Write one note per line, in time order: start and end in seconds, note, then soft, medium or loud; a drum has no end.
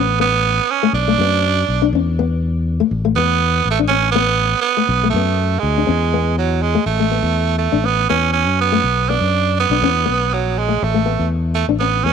0.00 0.59 A1 medium
0.00 0.20 B3 medium
0.00 0.17 C#4 medium
0.20 0.41 B3 medium
0.20 0.73 B3 loud
0.71 0.94 C#4 medium
0.83 0.93 A3 medium
0.93 1.16 B1 medium
0.93 1.89 D4 loud
1.08 1.18 A3 medium
1.18 1.63 F#2 loud
1.18 1.41 B3 medium
1.68 1.90 B1 medium
1.82 1.92 D4 medium
1.93 2.81 E2 loud
1.93 2.15 C#4 medium
2.19 2.39 B3 medium
2.80 2.90 A3 medium
2.91 3.13 A1 medium
3.05 3.15 A3 medium
3.16 3.60 E2 loud
3.16 3.70 B3 medium
3.16 3.38 B3 medium
3.65 4.53 A1 medium
3.71 3.79 A3 medium
3.79 3.89 D4 medium
3.88 4.11 C#4 loud
3.88 4.11 C#4 medium
4.11 4.59 B3 loud
4.15 4.36 B3 medium
4.61 5.08 B3 medium
4.77 4.87 A3 medium
4.89 5.11 B1 loud
5.03 5.13 A3 medium
5.10 5.57 F#2 loud
5.10 5.61 A3 medium
5.16 5.36 B3 medium
5.59 5.85 D2 medium
5.59 6.35 G#3 medium
5.78 5.86 D4 medium
5.87 6.76 E2 medium
5.87 6.08 C#4 medium
6.14 6.34 B3 medium
6.38 6.64 F#3 medium
6.62 6.86 G#3 medium
6.75 6.85 A3 medium
6.86 7.19 A1 medium
6.86 7.56 A3 medium
7.00 7.09 A3 medium
7.11 7.32 B3 medium
7.23 7.67 E2 medium
7.58 7.87 A3 medium
7.72 8.06 A1 medium
7.72 7.83 D4 medium
7.84 8.09 B3 medium
7.84 muted nylon-string guitar stroke medium
8.09 8.47 E2 medium
8.09 8.30 B3 medium
8.09 8.32 C#4 medium
8.33 8.56 C#4 medium
8.47 8.80 F#2 medium
8.61 9.11 B3 loud
8.72 8.82 A3 medium
8.84 9.17 B1 medium
9.09 9.30 B3 medium
9.09 9.58 D4 medium
9.20 9.65 F#2 medium
9.60 10.35 B3 medium
9.70 9.81 B1 medium
9.70 9.81 D4 medium
9.82 10.04 E2 loud
9.82 10.04 C#4 medium
10.06 10.44 B1 medium
10.06 10.27 B3 medium
10.33 10.60 F#3 medium
10.44 10.77 A#1 medium
10.59 10.85 G#3 medium
10.69 10.79 A3 medium
10.82 11.15 A1 medium
10.82 11.30 A3 medium
10.94 11.04 A3 medium
11.06 11.27 B3 medium
11.19 11.63 E2 medium
11.55 11.66 A3 medium
11.68 12.01 A1 medium
11.68 11.79 D4 medium
11.80 12.06 B3 medium
11.80 12.01 C#4 medium
12.04 12.13 E2 medium
12.04 12.13 B3 medium
12.04 12.13 C#4 medium